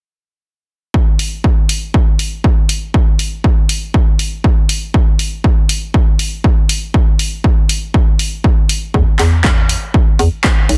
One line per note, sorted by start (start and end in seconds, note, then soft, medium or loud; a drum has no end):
0.94 kick loud
1.19 open hi-hat loud
1.44 kick loud
1.69 open hi-hat medium
1.94 kick loud
2.19 open hi-hat loud
2.44 kick loud
2.69 open hi-hat medium
2.94 kick loud
3.19 open hi-hat loud
3.44 kick loud
3.69 open hi-hat loud
3.94 kick loud
4.19 open hi-hat loud
4.44 kick loud
4.69 open hi-hat medium
4.94 kick loud
5.19 open hi-hat loud
5.44 kick loud
5.69 open hi-hat loud
5.94 kick loud
6.19 open hi-hat loud
6.44 kick loud
6.69 open hi-hat medium
6.94 kick loud
7.19 open hi-hat loud
7.44 kick loud
7.69 open hi-hat medium
7.94 kick loud
8.19 open hi-hat loud
8.44 kick loud
8.69 open hi-hat medium
8.94 9.04 E2 medium
8.94 kick loud
9.19 9.76 E2 medium
9.19 clap medium
9.19 open hi-hat loud
9.44 kick loud
9.44 clap loud
9.69 open hi-hat medium
9.94 kick loud
10.19 10.29 E2 loud
10.19 open hi-hat loud
10.44 kick loud
10.44 clap loud
10.69 10.78 B1 loud
10.69 open hi-hat medium